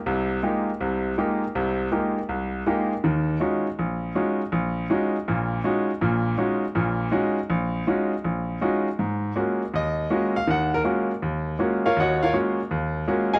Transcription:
0.06 0.38 C2 medium
0.06 0.38 C3 medium
0.43 0.69 G#3 medium
0.43 0.69 A#3 soft
0.43 0.69 D#4 soft
0.43 0.69 F4 soft
0.43 0.69 G4 medium
0.80 1.12 C2 medium
0.80 1.12 C3 medium
1.18 1.43 G#3 medium
1.18 1.43 A#3 soft
1.18 1.43 D#4 soft
1.18 1.43 F4 medium
1.18 1.44 G4 medium
1.55 1.87 C2 medium
1.55 1.87 C3 medium
1.92 2.17 G#3 soft
1.92 2.18 A#3 soft
1.92 2.18 D#4 soft
1.92 2.18 F4 soft
1.92 2.18 G4 medium
2.29 2.61 C2 medium
2.66 2.92 G#3 medium
2.66 2.92 A#3 soft
2.66 2.92 D#4 soft
2.66 2.92 F4 soft
2.66 2.92 G4 medium
3.04 3.36 D#2 medium
3.04 3.36 D#3 medium
3.40 3.66 G#3 medium
3.40 3.66 C#4 soft
3.40 3.66 D#4 soft
3.40 3.66 F4 soft
3.40 3.66 F#4 medium
3.79 4.10 A#1 medium
4.15 4.41 G#3 medium
4.15 4.41 C#4 soft
4.15 4.41 D#4 soft
4.15 4.41 F4 soft
4.15 4.41 F#4 medium
4.52 4.84 A#1 medium
4.90 5.15 G#3 medium
4.90 5.15 C#4 soft
4.90 5.16 D#4 medium
4.90 5.16 F4 soft
4.90 5.16 F#4 medium
5.28 5.59 A#1 medium
5.28 5.59 A#2 medium
5.64 5.90 G#3 medium
5.64 5.90 C#4 soft
5.64 5.90 D#4 medium
5.64 5.90 F4 soft
5.64 5.90 F#4 medium
6.01 6.33 A#1 medium
6.01 6.33 A#2 medium
6.38 6.64 G#3 medium
6.38 6.64 C#4 soft
6.38 6.64 D#4 medium
6.38 6.64 F4 soft
6.38 6.64 F#4 medium
6.75 7.07 A#1 medium
6.75 7.07 A#2 medium
7.12 7.38 G#3 medium
7.12 7.38 C#4 medium
7.12 7.38 D#4 medium
7.12 7.38 F4 medium
7.12 7.38 F#4 medium
7.50 7.82 A#1 medium
7.87 8.13 G#3 medium
7.87 8.13 C#4 soft
7.87 8.13 D#4 soft
7.87 8.13 F4 medium
7.87 8.13 F#4 medium
8.24 8.56 A#1 medium
8.61 8.87 G#3 medium
8.61 8.87 C#4 medium
8.61 8.87 D#4 medium
8.61 8.88 F4 medium
8.61 8.87 F#4 medium
8.99 9.31 G#2 medium
9.36 9.62 G#3 medium
9.36 9.62 A#3 soft
9.36 9.62 C#4 soft
9.36 9.62 F4 soft
9.36 9.62 F#4 medium
9.74 10.06 D#2 medium
9.74 10.32 D#5 medium
10.10 10.36 G#3 medium
10.10 10.36 A#3 soft
10.10 10.36 C#4 soft
10.10 10.37 F4 soft
10.10 10.36 F#4 medium
10.36 10.48 F5 medium
10.47 10.80 D#2 medium
10.47 10.80 D#3 medium
10.47 10.73 F#5 medium
10.74 10.81 A#4 medium
10.84 11.11 G#3 medium
10.84 11.10 A#3 soft
10.84 11.11 C#4 soft
10.84 11.11 F4 soft
10.84 11.11 F#4 medium
11.22 11.55 D#2 medium
11.59 11.85 G#3 medium
11.59 11.85 A#3 soft
11.59 11.85 C#4 soft
11.59 11.85 F4 soft
11.59 11.86 F#4 medium
11.86 11.97 F4 medium
11.86 11.97 A#4 medium
11.86 11.97 C#5 medium
11.86 11.97 F5 medium
11.97 12.29 D#2 medium
11.97 12.22 F#4 medium
11.97 12.22 D#5 medium
11.97 12.22 F#5 medium
12.01 12.22 C#5 medium
12.23 12.32 F4 medium
12.23 12.35 A#4 medium
12.23 12.35 C#5 medium
12.23 12.34 F5 medium
12.33 12.59 G#3 medium
12.33 12.59 A#3 soft
12.33 12.60 C#4 soft
12.33 12.60 F4 soft
12.33 12.60 F#4 medium
12.71 13.03 D#2 medium
13.08 13.34 G#3 medium
13.08 13.34 A#3 soft
13.08 13.34 C#4 soft
13.08 13.34 F4 medium
13.08 13.34 F#4 medium
13.34 13.39 G#4 medium
13.34 13.39 D#5 medium
13.34 13.39 F5 medium
13.34 13.39 G#5 medium

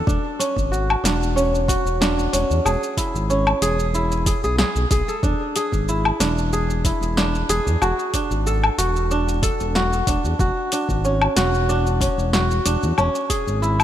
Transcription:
0.00 0.57 F#4 medium
0.00 1.07 A4 loud
0.07 0.19 E1 loud
0.07 0.45 D4 medium
0.07 kick loud
0.07 shaker soft
0.39 1.10 C#4 medium
0.39 open hi-hat medium
0.39 shaker medium
0.57 0.96 G#1 medium
0.57 kick medium
0.57 shaker soft
0.72 1.68 F#4 medium
0.72 shaker soft
0.90 low woodblock medium
1.04 1.76 E1 medium
1.04 1.42 D4 medium
1.04 snare medium
1.04 open hi-hat medium
1.04 shaker medium
1.23 shaker soft
1.36 2.07 C#4 medium
1.36 shaker soft
1.55 shaker soft
1.68 3.15 F#4 loud
1.68 kick loud
1.68 open hi-hat medium
1.68 shaker medium
1.86 2.17 E1 loud
1.86 shaker soft
2.01 2.39 D4 medium
2.01 snare medium
2.01 shaker soft
2.18 2.28 E1 medium
2.18 shaker soft
2.33 2.44 E1 medium
2.33 3.29 C#4 medium
2.33 open hi-hat medium
2.33 shaker medium
2.50 2.60 E2 medium
2.50 shaker soft
2.65 2.77 E1 loud
2.65 3.62 G#4 medium
2.65 low woodblock medium
2.65 shaker soft
2.83 shaker soft
2.97 3.94 E4 medium
2.97 kick medium
2.97 open hi-hat medium
2.97 shaker medium
3.15 3.54 G#1 loud
3.15 shaker soft
3.30 5.04 C#4 medium
3.30 shaker soft
3.47 low woodblock medium
3.62 4.34 E1 medium
3.62 4.27 G#4 loud
3.62 open hi-hat medium
3.62 shaker medium
3.80 shaker soft
3.94 5.51 E4 medium
3.94 shaker soft
4.12 shaker soft
4.26 4.44 G#4 medium
4.26 kick loud
4.26 open hi-hat medium
4.26 shaker medium
4.44 4.64 B1 loud
4.44 4.58 G#4 loud
4.44 shaker soft
4.58 4.91 G#4 loud
4.58 snare medium
4.58 shaker soft
4.76 4.86 B1 loud
4.76 shaker soft
4.91 5.02 B1 loud
4.91 5.14 G#4 loud
4.91 kick loud
4.91 open hi-hat medium
4.91 shaker medium
5.08 5.62 A4 medium
5.08 shaker soft
5.23 5.35 E1 loud
5.23 6.20 D4 medium
5.23 kick loud
5.23 shaker soft
5.56 6.53 G#4 loud
5.56 open hi-hat medium
5.56 shaker medium
5.72 6.12 G#1 medium
5.72 kick medium
5.72 shaker soft
5.89 6.85 E4 medium
5.89 shaker soft
6.05 low woodblock medium
6.20 6.92 E1 medium
6.20 7.17 D4 medium
6.20 snare medium
6.20 open hi-hat medium
6.20 shaker medium
6.38 shaker soft
6.53 7.49 G#4 medium
6.53 shaker soft
6.70 shaker soft
6.85 8.42 E4 medium
6.85 kick loud
6.85 open hi-hat medium
6.85 shaker medium
7.01 7.33 E1 loud
7.01 shaker soft
7.17 8.14 D4 medium
7.17 snare medium
7.17 shaker soft
7.34 7.44 E1 medium
7.34 shaker soft
7.49 7.60 E1 medium
7.49 8.53 G#4 loud
7.49 open hi-hat medium
7.49 shaker medium
7.67 7.77 E2 medium
7.67 shaker soft
7.82 7.93 E1 loud
7.82 8.78 F#4 medium
7.82 low woodblock medium
7.82 shaker soft
7.99 shaker soft
8.14 9.11 D4 medium
8.14 kick medium
8.14 open hi-hat medium
8.14 shaker medium
8.31 8.70 G#1 loud
8.31 shaker soft
8.47 9.42 A4 medium
8.47 shaker soft
8.64 low woodblock medium
8.78 9.51 E1 medium
8.78 9.75 F#4 medium
8.78 open hi-hat medium
8.78 shaker medium
8.96 shaker soft
9.11 10.07 D4 medium
9.11 shaker soft
9.29 shaker soft
9.43 10.75 A4 loud
9.43 kick loud
9.43 open hi-hat medium
9.43 shaker medium
9.60 9.92 E1 loud
9.60 shaker soft
9.75 10.40 F#4 loud
9.75 snare medium
9.75 shaker soft
9.92 10.02 E1 medium
9.92 shaker soft
10.07 10.18 E1 medium
10.07 10.72 D4 medium
10.07 kick loud
10.07 open hi-hat medium
10.07 shaker medium
10.24 10.34 E2 medium
10.24 shaker soft
10.39 10.51 E1 loud
10.39 11.36 F#4 medium
10.39 kick loud
10.39 shaker soft
10.72 11.11 D4 medium
10.72 open hi-hat medium
10.72 shaker medium
10.89 11.28 G#1 loud
10.89 kick medium
10.89 shaker soft
11.05 11.75 C#4 medium
11.05 shaker soft
11.22 low woodblock medium
11.36 12.09 E1 medium
11.36 12.33 F#4 loud
11.36 snare medium
11.36 open hi-hat loud
11.36 shaker medium
11.54 shaker soft
11.69 12.07 D4 medium
11.69 shaker soft
11.87 shaker soft
12.01 12.71 C#4 medium
12.01 kick loud
12.01 open hi-hat loud
12.01 shaker medium
12.18 12.50 E1 loud
12.18 shaker soft
12.33 13.80 F#4 medium
12.33 snare medium
12.33 shaker soft
12.50 12.60 E1 medium
12.50 shaker soft
12.65 12.77 E1 medium
12.65 13.04 D4 medium
12.65 open hi-hat medium
12.65 shaker medium
12.83 12.93 E2 medium
12.83 shaker soft
12.98 13.09 E1 loud
12.98 13.84 C#4 medium
12.98 low woodblock medium
12.98 shaker soft
13.15 shaker soft
13.30 13.84 G#4 loud
13.30 kick medium
13.30 open hi-hat medium
13.30 shaker medium
13.47 13.84 G#1 loud
13.47 shaker soft
13.62 13.84 E4 medium
13.62 shaker soft
13.80 low woodblock medium
13.80 shaker soft

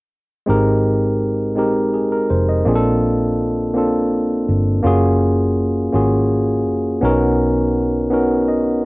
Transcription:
0.46 1.57 G#1 medium
0.46 1.36 G#3 medium
0.46 1.36 C4 medium
0.46 1.37 D#4 medium
0.46 1.37 G4 medium
0.46 1.37 A#4 medium
1.56 2.25 A#1 medium
1.56 2.45 G#3 medium
1.56 2.45 C4 medium
1.56 2.46 D#4 medium
1.56 1.93 G4 medium
1.56 1.94 A#4 medium
1.94 2.10 G#4 soft
2.12 2.28 A#4 medium
2.30 2.62 F1 medium
2.30 2.47 C5 medium
2.49 2.82 D#5 medium
2.65 4.43 A#1 medium
2.65 3.54 A#3 medium
2.65 3.55 C4 medium
2.65 3.55 D4 medium
2.65 3.55 F4 medium
2.65 2.73 G#4 medium
2.75 3.59 A4 medium
3.74 4.63 A#3 medium
3.74 4.63 C4 medium
3.74 4.64 D4 medium
3.74 4.64 F4 medium
3.74 4.65 A4 medium
4.49 4.80 G1 medium
4.83 5.89 F#1 medium
4.83 5.72 A#3 medium
4.83 5.73 C#4 medium
4.83 5.73 F4 medium
4.83 5.74 F#4 medium
4.87 5.74 G#4 medium
5.93 6.66 G#1 medium
5.93 6.82 A#3 medium
5.93 6.82 C#4 medium
5.93 6.82 F4 medium
5.93 6.83 F#4 medium
5.93 6.83 G#4 medium
6.66 6.98 F#1 medium
7.01 8.80 B1 loud
7.01 7.90 B3 medium
7.01 7.91 C#4 medium
7.01 7.91 D#4 medium
7.01 7.92 F#4 medium
7.01 7.92 A#4 medium
8.10 8.85 B3 medium
8.10 8.85 C#4 medium
8.10 8.85 D#4 medium
8.10 8.85 F#4 medium
8.10 8.85 A#4 medium
8.48 8.81 D#5 medium

